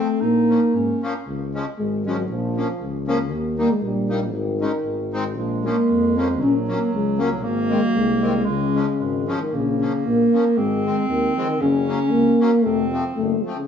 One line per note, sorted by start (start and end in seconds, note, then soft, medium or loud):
0.00 0.25 A3 loud
0.00 0.22 C4 loud
0.21 0.56 A#1 medium
0.21 1.03 A#3 medium
0.21 0.74 D#4 loud
0.50 0.60 F3 medium
0.50 0.61 A#3 soft
0.50 0.60 C#4 medium
0.74 0.92 G#2 medium
0.74 1.24 C#4 medium
1.02 1.14 F3 medium
1.02 1.14 A#3 medium
1.02 1.13 C#4 medium
1.27 1.61 C#2 medium
1.55 1.65 F3 medium
1.55 1.65 G#3 medium
1.55 1.65 C#4 medium
1.78 2.32 G#1 medium
1.78 2.07 G#3 medium
2.05 2.17 F3 medium
2.05 2.30 F#3 medium
2.05 2.17 G#3 soft
2.05 2.17 C#4 medium
2.30 2.63 A#1 loud
2.30 3.03 F3 loud
2.57 2.68 F3 soft
2.57 2.68 A#3 soft
2.57 2.68 C#4 medium
2.81 3.33 C#2 medium
3.08 3.18 F3 medium
3.08 3.18 A#3 medium
3.08 3.18 C#4 medium
3.31 3.64 D#2 medium
3.58 3.69 G3 medium
3.58 3.73 A#3 medium
3.58 3.69 A#3 medium
3.58 3.69 D#4 medium
3.71 3.83 G#3 medium
3.82 4.34 A#1 medium
3.82 4.28 G3 medium
4.09 4.20 G3 medium
4.09 4.20 A#3 medium
4.09 4.20 D#4 medium
4.26 4.36 F3 medium
4.32 4.67 G#1 loud
4.32 5.13 D#3 medium
4.61 4.72 G#3 medium
4.61 4.72 C#4 soft
4.61 4.72 D#4 medium
4.85 5.38 G#1 medium
5.13 5.25 G#3 medium
5.13 5.24 C4 medium
5.13 5.24 D#4 medium
5.37 5.71 A#1 medium
5.37 5.66 F3 medium
5.37 6.42 G#3 medium
5.65 5.76 F3 medium
5.65 6.18 A#3 medium
5.65 5.76 A#3 soft
5.65 5.76 C#4 medium
5.90 6.43 F2 medium
6.16 6.28 F3 medium
6.16 6.28 A#3 soft
6.16 6.41 C4 medium
6.16 6.28 C#4 medium
6.41 6.75 A#1 medium
6.41 7.45 F#3 medium
6.41 6.54 C#4 loud
6.68 6.79 F#3 medium
6.68 6.79 A#3 soft
6.68 6.91 A#3 medium
6.68 6.79 C#4 medium
6.93 7.45 C#2 medium
6.93 7.18 G#3 medium
7.18 7.30 F#3 medium
7.18 7.32 F#3 medium
7.18 7.30 A#3 medium
7.18 7.30 C#4 medium
7.43 7.77 G#1 loud
7.43 8.47 A#3 loud
7.70 7.81 D#3 medium
7.70 7.81 G#3 soft
7.70 7.86 G#3 medium
7.70 7.81 C4 medium
7.84 7.98 F#3 medium
7.95 8.48 C2 medium
7.95 8.50 G#3 medium
8.22 8.33 D#3 medium
8.22 8.33 G#3 medium
8.22 8.33 C4 medium
8.45 8.81 C#2 loud
8.45 9.27 C#3 medium
8.45 8.99 G#3 loud
8.75 8.86 F3 soft
8.75 8.86 G#3 medium
8.75 8.86 C#4 medium
9.00 9.35 G#1 medium
9.00 9.50 G#3 medium
9.28 9.39 F3 medium
9.28 9.42 F3 medium
9.28 9.39 G#3 medium
9.28 9.39 C#4 medium
9.41 9.56 D#3 medium
9.52 9.87 A#1 medium
9.52 10.06 C#3 loud
9.52 10.59 A#3 medium
9.81 9.93 F3 soft
9.81 9.93 A#3 soft
9.81 9.93 C#4 medium
10.05 10.23 A#1 medium
10.05 10.59 A#3 medium
10.33 10.45 F3 medium
10.33 10.44 A#3 soft
10.33 10.45 C#4 medium
10.57 10.91 G#1 medium
10.57 11.09 G#3 loud
10.57 11.63 C4 loud
10.86 10.97 D#3 soft
10.86 10.96 G#3 soft
10.86 10.96 C4 medium
11.09 11.27 D#2 medium
11.09 11.34 D#3 medium
11.35 11.48 D#3 medium
11.35 11.50 F3 medium
11.35 11.48 G#3 medium
11.35 11.48 C4 medium
11.48 11.59 D#3 medium
11.60 11.94 F#1 medium
11.60 12.11 C#3 loud
11.60 12.48 C#4 loud
11.88 11.99 F#3 medium
11.88 11.99 A#3 soft
11.88 11.99 C#4 medium
12.10 12.30 C#2 medium
12.10 12.64 A#3 loud
12.40 12.51 F#3 medium
12.40 12.51 A#3 medium
12.40 12.51 C#4 medium
12.62 12.99 F1 medium
12.62 12.88 A3 loud
12.62 13.41 C4 medium
12.89 13.14 F3 medium
12.89 13.04 F3 soft
12.89 13.04 C4 medium
12.93 13.04 A3 soft
13.16 13.36 F#1 medium
13.16 13.44 A3 medium
13.43 13.55 F3 medium
13.43 13.57 F3 soft
13.43 13.57 A3 medium
13.47 13.58 C4 medium
13.56 13.67 C#3 medium